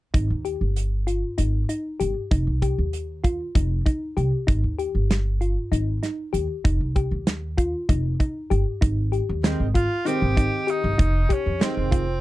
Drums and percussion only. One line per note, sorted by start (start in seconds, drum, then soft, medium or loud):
0.14 kick medium
0.14 closed hi-hat medium
0.45 closed hi-hat soft
0.76 closed hi-hat medium
1.08 closed hi-hat soft
1.38 closed hi-hat medium
1.69 closed hi-hat medium
2.00 closed hi-hat soft
2.31 kick medium
2.31 closed hi-hat medium
2.62 kick medium
2.62 closed hi-hat soft
2.93 closed hi-hat medium
3.24 kick medium
3.24 closed hi-hat soft
3.55 kick medium
3.55 closed hi-hat medium
3.86 kick medium
3.86 closed hi-hat soft
4.18 closed hi-hat soft
4.48 kick medium
4.48 closed hi-hat medium
4.79 closed hi-hat soft
5.11 snare medium
5.11 closed hi-hat medium
5.42 closed hi-hat soft
5.73 closed hi-hat medium
6.03 snare soft
6.03 closed hi-hat soft
6.34 closed hi-hat soft
6.65 kick medium
6.65 closed hi-hat medium
6.96 kick medium
6.96 closed hi-hat soft
7.27 snare medium
7.27 closed hi-hat medium
7.58 kick medium
7.58 closed hi-hat medium
7.89 kick medium
7.89 closed hi-hat medium
8.20 kick medium
8.20 closed hi-hat soft
8.51 closed hi-hat soft
8.82 kick medium
8.82 closed hi-hat medium
9.13 closed hi-hat soft
9.44 snare medium
9.44 closed hi-hat medium
9.75 kick medium
9.75 closed hi-hat medium
10.06 closed hi-hat medium
10.37 kick medium
10.37 closed hi-hat medium
10.68 closed hi-hat medium
10.99 kick medium
10.99 closed hi-hat medium
11.30 kick medium
11.30 closed hi-hat soft
11.61 snare medium
11.61 closed hi-hat medium
11.92 kick medium
11.92 closed hi-hat medium